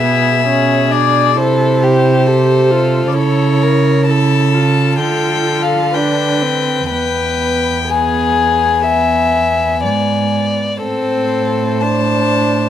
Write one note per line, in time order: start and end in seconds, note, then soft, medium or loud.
0.00 1.38 B2 soft
0.00 0.47 B3 soft
0.00 0.46 G#4 soft
0.00 0.93 E5 medium
0.46 0.92 C#4 soft
0.46 1.35 G#4 soft
0.90 1.36 D4 soft
0.90 1.38 D5 medium
1.36 3.14 C3 soft
1.36 2.28 E4 soft
1.36 1.84 A4 soft
1.36 3.09 C5 medium
1.83 2.28 G4 soft
2.26 2.73 G4 soft
2.26 3.14 A4 soft
2.71 3.16 F4 soft
3.08 3.15 D5 soft
3.13 5.01 C#3 soft
3.13 4.08 E4 soft
3.13 3.64 A4 soft
3.13 4.06 C#5 soft
3.62 4.11 A#4 soft
4.07 4.56 E4 soft
4.07 4.99 A4 soft
4.07 4.98 A5 medium
4.54 5.96 F4 soft
4.99 6.90 D3 soft
4.99 5.92 A4 soft
4.99 5.64 G5 soft
5.62 5.96 F5 soft
5.94 6.43 D4 soft
5.94 6.89 B4 soft
5.94 6.91 G5 soft
6.42 6.93 C4 soft
6.91 9.86 E2 soft
6.91 10.60 B3 soft
6.91 7.77 B4 soft
6.91 7.92 G5 soft
7.89 8.84 G#4 soft
7.89 10.33 G#5 soft
8.88 9.83 E5 soft
9.85 10.60 G#2 soft
9.85 10.79 D5 soft
10.80 12.69 A2 soft
10.80 11.83 C4 soft
10.80 11.84 A4 soft
10.80 11.83 C5 soft
11.81 12.69 D4 soft
11.81 12.69 C5 soft
11.81 12.69 A5 soft